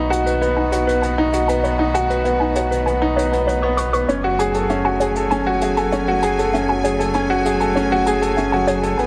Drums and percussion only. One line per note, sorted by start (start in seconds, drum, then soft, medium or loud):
0.12 closed hi-hat medium
0.27 closed hi-hat medium
0.42 closed hi-hat soft
0.72 closed hi-hat medium
0.89 closed hi-hat soft
1.03 closed hi-hat soft
1.33 closed hi-hat medium
1.49 closed hi-hat soft
1.64 closed hi-hat soft
1.95 closed hi-hat medium
2.10 closed hi-hat soft
2.25 closed hi-hat soft
2.55 closed hi-hat medium
2.72 closed hi-hat soft
2.87 closed hi-hat soft
3.19 closed hi-hat medium
3.33 closed hi-hat soft
3.49 closed hi-hat soft
3.78 closed hi-hat medium
3.94 closed hi-hat soft
4.09 closed hi-hat soft
4.39 closed hi-hat medium
4.54 closed hi-hat medium
4.70 closed hi-hat soft
5.00 closed hi-hat medium
5.15 closed hi-hat medium
5.31 closed hi-hat soft
5.61 closed hi-hat medium
5.77 closed hi-hat soft
5.92 closed hi-hat soft
6.23 closed hi-hat medium
6.39 closed hi-hat soft
6.54 closed hi-hat soft
6.84 closed hi-hat medium
7.00 closed hi-hat medium
7.14 closed hi-hat soft
7.46 closed hi-hat medium
7.60 closed hi-hat soft
7.77 closed hi-hat soft
8.07 closed hi-hat medium
8.22 closed hi-hat soft
8.37 closed hi-hat soft
8.67 closed hi-hat medium
8.83 closed hi-hat soft
8.99 closed hi-hat soft